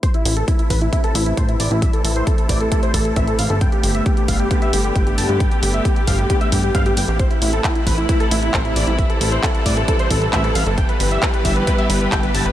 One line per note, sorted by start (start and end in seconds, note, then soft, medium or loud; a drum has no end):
0.03 3.58 C3 medium
0.03 3.58 E3 medium
0.03 8.95 A3 medium
0.03 3.58 E4 medium
0.03 0.11 C5 loud
0.03 kick loud
0.03 closed hi-hat medium
0.14 0.23 E4 medium
0.14 closed hi-hat soft
0.25 0.44 A1 loud
0.25 0.34 E4 medium
0.25 open hi-hat loud
0.37 0.45 A4 medium
0.37 closed hi-hat soft
0.48 0.56 E4 medium
0.48 kick loud
0.48 closed hi-hat medium
0.59 0.68 E4 medium
0.59 closed hi-hat soft
0.70 0.89 A1 medium
0.70 0.79 B4 medium
0.70 kick medium
0.70 open hi-hat medium
0.81 0.90 E4 medium
0.81 closed hi-hat soft
0.93 1.01 E4 medium
0.93 kick loud
0.93 closed hi-hat medium
1.04 1.12 A4 medium
1.04 closed hi-hat soft
1.15 1.33 A1 medium
1.15 1.23 E4 medium
1.15 open hi-hat loud
1.26 1.35 E4 medium
1.26 closed hi-hat soft
1.37 1.56 A1 loud
1.37 1.46 C5 medium
1.37 kick loud
1.37 closed hi-hat medium
1.49 1.57 E4 medium
1.49 closed hi-hat soft
1.60 1.69 A1 medium
1.60 1.68 D5 medium
1.60 open hi-hat medium
1.71 1.89 A1 loud
1.71 1.79 E4 medium
1.71 closed hi-hat soft
1.82 1.91 E5 loud
1.82 kick loud
1.82 closed hi-hat medium
1.93 2.02 A4 medium
1.93 closed hi-hat soft
2.05 2.23 A1 loud
2.05 2.13 A4 medium
2.05 open hi-hat loud
2.16 2.24 C5 medium
2.16 closed hi-hat soft
2.27 2.35 A4 medium
2.27 kick loud
2.27 closed hi-hat medium
2.38 2.47 A4 medium
2.38 closed hi-hat soft
2.49 2.68 A1 medium
2.49 2.58 D5 medium
2.49 kick medium
2.49 open hi-hat medium
2.61 2.69 A4 medium
2.61 closed hi-hat soft
2.72 2.80 A4 medium
2.72 kick loud
2.72 closed hi-hat medium
2.83 2.91 C5 medium
2.83 closed hi-hat soft
2.94 3.13 A1 medium
2.94 3.02 A4 medium
2.94 kick medium
2.94 open hi-hat loud
3.05 3.14 A4 medium
3.05 closed hi-hat soft
3.16 3.35 A1 loud
3.16 3.25 E5 medium
3.16 kick loud
3.16 closed hi-hat medium
3.28 3.36 A4 medium
3.28 closed hi-hat soft
3.39 3.48 A1 medium
3.39 3.47 F5 medium
3.39 open hi-hat medium
3.50 3.69 G1 loud
3.50 3.58 A4 medium
3.50 closed hi-hat soft
3.61 7.16 D3 medium
3.61 7.16 B3 medium
3.61 7.16 G4 medium
3.61 3.70 G5 loud
3.61 kick loud
3.61 closed hi-hat medium
3.72 3.81 G4 medium
3.72 closed hi-hat soft
3.83 4.02 G1 loud
3.83 3.92 G4 medium
3.83 open hi-hat loud
3.95 4.03 E5 medium
3.95 closed hi-hat soft
4.06 4.14 G4 medium
4.06 kick loud
4.06 closed hi-hat medium
4.17 4.26 G4 medium
4.17 closed hi-hat soft
4.28 4.47 G1 medium
4.28 4.37 F5 medium
4.28 kick medium
4.28 open hi-hat medium
4.40 4.48 G4 medium
4.40 closed hi-hat soft
4.51 4.59 G4 medium
4.51 kick loud
4.51 closed hi-hat medium
4.62 4.70 E5 medium
4.62 closed hi-hat soft
4.73 4.92 G1 medium
4.73 4.82 G4 medium
4.73 open hi-hat loud
4.84 4.93 G4 medium
4.84 closed hi-hat soft
4.96 5.14 G1 loud
4.96 5.04 G5 medium
4.96 kick loud
4.96 closed hi-hat medium
5.07 5.15 G4 medium
5.07 closed hi-hat soft
5.18 5.27 G1 medium
5.18 5.26 A5 medium
5.18 open hi-hat medium
5.29 5.48 G1 loud
5.29 5.38 G4 medium
5.29 closed hi-hat soft
5.40 5.49 G5 loud
5.40 kick loud
5.40 closed hi-hat medium
5.52 5.60 G4 medium
5.52 closed hi-hat soft
5.63 5.81 G1 loud
5.63 5.71 G4 medium
5.63 open hi-hat loud
5.74 5.82 E5 medium
5.74 closed hi-hat soft
5.85 5.94 G4 medium
5.85 kick loud
5.85 closed hi-hat medium
5.96 6.05 G4 medium
5.96 closed hi-hat soft
6.07 6.26 G1 medium
6.07 6.16 F5 medium
6.07 kick medium
6.07 open hi-hat medium
6.19 6.27 G4 medium
6.19 closed hi-hat soft
6.30 6.38 G4 medium
6.30 kick loud
6.30 closed hi-hat medium
6.41 6.49 E5 medium
6.41 closed hi-hat soft
6.52 6.71 G1 loud
6.52 6.61 G4 medium
6.52 kick medium
6.52 open hi-hat loud
6.63 6.72 G4 medium
6.63 closed hi-hat soft
6.75 6.93 G1 medium
6.75 6.83 F5 medium
6.75 kick loud
6.75 closed hi-hat medium
6.86 6.94 G4 medium
6.86 closed hi-hat soft
6.97 7.06 G1 medium
6.97 7.05 G5 medium
6.97 open hi-hat medium
7.08 7.27 A1 medium
7.08 7.17 G4 medium
7.08 closed hi-hat soft
7.19 10.74 C3 medium
7.19 12.52 E3 medium
7.19 10.74 E4 medium
7.19 7.28 C5 loud
7.19 kick loud
7.19 closed hi-hat medium
7.31 7.39 E4 medium
7.31 closed hi-hat soft
7.42 7.60 A1 loud
7.42 7.50 E4 medium
7.42 open hi-hat loud
7.53 7.61 A4 medium
7.53 closed hi-hat soft
7.64 7.73 E4 medium
7.64 kick loud
7.64 clap loud
7.64 closed hi-hat medium
7.75 7.84 E4 medium
7.75 closed hi-hat soft
7.87 8.05 A1 medium
7.87 7.95 B4 medium
7.87 kick medium
7.87 open hi-hat medium
7.98 8.06 E4 medium
7.98 closed hi-hat soft
8.09 8.17 E4 medium
8.09 kick loud
8.09 closed hi-hat medium
8.20 8.29 A4 loud
8.20 closed hi-hat soft
8.31 8.50 A1 medium
8.31 8.40 E4 medium
8.31 open hi-hat loud
8.43 8.51 E4 medium
8.43 closed hi-hat soft
8.54 8.72 A1 loud
8.54 8.62 C5 medium
8.54 kick loud
8.54 clap loud
8.54 closed hi-hat medium
8.65 8.73 E4 medium
8.65 closed hi-hat soft
8.76 8.85 A1 medium
8.76 8.84 D5 medium
8.76 open hi-hat medium
8.87 9.06 A1 loud
8.87 8.96 E4 medium
8.87 closed hi-hat soft
8.98 12.52 G3 medium
8.98 9.07 E5 loud
8.98 kick loud
8.98 closed hi-hat medium
9.10 9.18 A4 medium
9.10 closed hi-hat soft
9.21 9.39 A1 medium
9.21 9.29 A4 medium
9.21 open hi-hat loud
9.32 9.41 C5 medium
9.32 closed hi-hat soft
9.43 9.52 A4 medium
9.43 kick loud
9.43 clap loud
9.43 closed hi-hat medium
9.55 9.63 A4 medium
9.55 closed hi-hat soft
9.66 9.84 A1 medium
9.66 9.74 D5 medium
9.66 kick medium
9.66 open hi-hat medium
9.77 9.85 A4 medium
9.77 closed hi-hat soft
9.88 9.97 A4 medium
9.88 kick loud
9.88 closed hi-hat medium
9.99 10.08 C5 medium
9.99 closed hi-hat soft
10.11 10.29 A1 medium
10.11 10.19 A4 medium
10.11 kick medium
10.11 open hi-hat loud
10.22 10.30 A4 medium
10.22 closed hi-hat soft
10.33 10.51 A1 loud
10.33 10.41 E5 medium
10.33 kick loud
10.33 clap loud
10.33 closed hi-hat medium
10.44 10.53 A4 medium
10.44 closed hi-hat soft
10.55 10.65 A1 medium
10.55 10.64 F5 medium
10.55 open hi-hat medium
10.67 10.85 G1 loud
10.67 10.75 A4 medium
10.67 closed hi-hat soft
10.78 12.52 B3 medium
10.78 12.52 G4 medium
10.78 10.86 G5 loud
10.78 kick loud
10.78 closed hi-hat medium
10.89 10.97 B4 medium
10.89 closed hi-hat soft
11.00 11.19 G1 loud
11.00 11.09 B4 medium
11.00 open hi-hat loud
11.11 11.20 E5 loud
11.11 closed hi-hat soft
11.23 11.31 B4 medium
11.23 kick loud
11.23 clap loud
11.23 closed hi-hat medium
11.34 11.42 B4 medium
11.34 closed hi-hat soft
11.45 11.63 G1 medium
11.45 11.53 E5 loud
11.45 kick medium
11.45 open hi-hat medium
11.56 11.65 B4 medium
11.56 closed hi-hat soft
11.67 11.76 B4 medium
11.67 kick loud
11.67 closed hi-hat medium
11.79 11.87 E5 medium
11.79 closed hi-hat soft
11.90 12.08 G1 medium
11.90 11.98 B4 medium
11.90 open hi-hat loud
12.01 12.09 B4 medium
12.01 closed hi-hat soft
12.12 12.31 G1 loud
12.12 12.20 G5 medium
12.12 kick loud
12.12 clap loud
12.12 closed hi-hat medium
12.23 12.32 B4 medium
12.23 closed hi-hat soft
12.34 12.44 G1 medium
12.34 12.43 A5 medium
12.34 open hi-hat medium
12.46 12.52 G1 loud
12.46 12.52 B4 medium
12.46 closed hi-hat soft